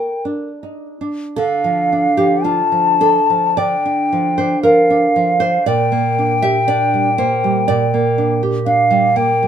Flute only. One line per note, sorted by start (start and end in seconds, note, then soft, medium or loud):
0.00 0.25 G5 soft
1.37 2.45 F5 soft
2.44 3.60 A5 medium
3.58 4.63 G5 medium
4.63 5.69 F5 medium
5.68 8.42 G5 medium
8.66 9.18 F5 medium
9.16 9.48 G5 medium